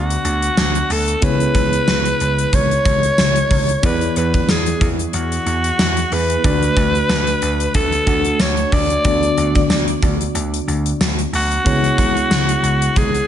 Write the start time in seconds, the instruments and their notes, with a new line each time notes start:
Already playing: slap bass D2, tine electric piano D3 B3 D4 F#4 D5, alto saxophone F#4
0.10 closed hi-hat
0.24 slap bass D2, closed hi-hat
0.42 closed hi-hat
0.57 slap bass D2, snare, tambourine
0.75 closed hi-hat
0.90 slap bass D2, alto saxophone A4, open hi-hat
1.08 closed hi-hat
1.21 slap bass C#2, tine electric piano C#3 B3 E4 G#4 C#5, alto saxophone B4, kick, closed hi-hat
1.40 closed hi-hat
1.55 slap bass C#2, kick, closed hi-hat
1.73 closed hi-hat
1.88 slap bass C#2, snare, tambourine
2.05 closed hi-hat
2.20 slap bass C#2, closed hi-hat
2.39 closed hi-hat
2.53 slap bass C#2, alto saxophone C#5, kick, closed hi-hat
2.71 closed hi-hat
2.85 slap bass C#2, kick, closed hi-hat
3.03 closed hi-hat
3.18 slap bass C#2, snare, tambourine
3.36 closed hi-hat
3.51 slap bass C#2, kick, open hi-hat
3.69 closed hi-hat
3.83 slap bass E2, tine electric piano E3 B3 E4 G#4 D5, alto saxophone B4, kick, closed hi-hat
4.01 closed hi-hat
4.16 slap bass E2, alto saxophone B4, closed hi-hat
4.34 kick, closed hi-hat
4.49 slap bass E2, alto saxophone G#4, snare, tambourine
4.66 closed hi-hat
4.81 slap bass E2, kick, closed hi-hat
4.99 closed hi-hat
5.13 slap bass E2, alto saxophone F#4, closed hi-hat
5.32 closed hi-hat
5.46 slap bass E2, closed hi-hat
5.64 closed hi-hat
5.79 slap bass E2, snare, tambourine
5.97 closed hi-hat
6.12 slap bass E2, tine electric piano B3 E4 G#4 B4, alto saxophone B4, open hi-hat
6.30 closed hi-hat
6.43 slap bass D2, tine electric piano D3 A3 D4 F#4 D5, kick, closed hi-hat
6.62 closed hi-hat
6.77 slap bass D2, kick, closed hi-hat
6.95 closed hi-hat
7.09 slap bass D2, snare, tambourine
7.27 closed hi-hat
7.42 slap bass D2, closed hi-hat
7.60 closed hi-hat
7.74 slap bass D2, alto saxophone A4, kick, closed hi-hat
7.92 closed hi-hat
8.07 slap bass D2, tine electric piano A3 D4 F#4 F#5, kick, closed hi-hat
8.25 closed hi-hat
8.39 slap bass D2, alto saxophone C#5, snare, tambourine
8.57 closed hi-hat
8.72 slap bass D2, alto saxophone D5, kick, open hi-hat
8.90 closed hi-hat
9.04 slap bass D2, tine electric piano D3 B3 D4 F#4 D5, kick, closed hi-hat
9.23 closed hi-hat
9.37 slap bass D2, closed hi-hat
9.55 kick, closed hi-hat
9.69 slap bass D2, snare, tambourine
9.88 closed hi-hat
10.03 slap bass D2, kick, closed hi-hat
10.21 closed hi-hat
10.35 slap bass D2, closed hi-hat
10.54 closed hi-hat
10.68 slap bass D2, closed hi-hat
10.86 closed hi-hat
11.00 slap bass D2, snare, tambourine
11.19 closed hi-hat
11.33 slap bass D2, alto saxophone F#4, open hi-hat
11.52 closed hi-hat
11.65 slap bass C#2, tine electric piano C#3 B3 E4 G#4 C#5, kick, closed hi-hat
11.84 closed hi-hat
11.98 slap bass C#2, kick, closed hi-hat
12.17 closed hi-hat
12.30 slap bass C#2, snare, tambourine
12.49 closed hi-hat
12.63 slap bass C#2, closed hi-hat
12.82 closed hi-hat
12.96 slap bass C#2, alto saxophone G#4, kick, closed hi-hat
13.14 closed hi-hat